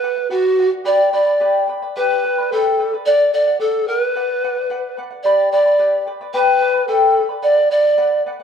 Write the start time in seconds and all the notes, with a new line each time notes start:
Already playing: B4
0.03 B4 D5 F#5
0.17 D5 F#5
0.30 F#4 B4 D5 F#5
0.58 B4 D5 F#5
0.72 D5 F#5
0.84 G4 B4 D5 G5 B5
1.12 B4 D5 G5 B5
1.26 B4 D5 B5
1.40 G4 B4 D5 G5 B5
1.68 B4 D5 G5 B5
1.82 B4 D5 B5
1.96 G4 B4 D5 G5 B5
2.24 B4 D5 G5 B5
2.38 B4 D5 B5
2.52 G4 A4 B4 D5 G5 B5
2.79 B4 D5 G5 B5
2.93 B4 D5 B5
3.06 A4 D5 F#5
3.33 A4 D5 F#5
3.46 D5 F#5
3.60 A4 D5 F#5
3.87 A4 A#4 D5 F#5
4.01 B4 D5 F#5
4.15 B4 D5 F#5
4.43 B4 D5 F#5
4.57 D5 F#5
4.70 B4 D5 F#5
4.97 B4 D5 F#5
5.10 D5 F#5
5.23 G4 B4 D5 G5 B5
5.52 B4 D5 G5 B5
5.66 B4 D5 B5
5.79 G4 B4 D5 G5 B5
6.07 B4 D5 G5 B5
6.21 B4 D5 B5
6.34 G4 B4 D5 G5 B5
6.61 B4 D5 G5 B5
6.74 B4 D5 B5
6.88 G4 A4 B4 D5 G5 B5
7.13 B4 D5 G5 B5
7.29 B4 D5 B5
7.42 B4 D5 F#5
7.70 B4 D5 F#5
7.84 D5 F#5
7.98 B4 D5 F#5
8.26 B4 D5 F#5
8.40 F#5